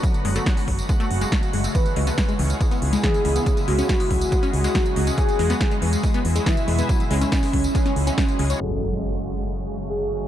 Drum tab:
CC |----------------|----------------|----------------|----------------|
HH |xxoxxooxxxo-xxox|xxoxxxoxxxoxxxox|xxoxxooxxxoxxxox|xxoxxxoxxxoxxxox|
TB |xx-xxx-xxx-xxx-x|xx-xxx-xxx-xxx-x|xx-xxx-xxx-xxx-x|xx-xxx-xxx-xxx-x|
SD |---oo-------o---|---oo-------o---|----o-------o---|---oo-------o---|
BD |o---o-o-o---o---|o---o---o---o---|o---o-o-o---o---|o---o---o---o---|

CC |----------------|x---------------|
HH |xxoxxooxxxoxxxox|----------------|
TB |xx-xxx-xxx-xxx-x|----------------|
SD |---oo----o--o---|----------------|
BD |o---o-o-o---o---|----------------|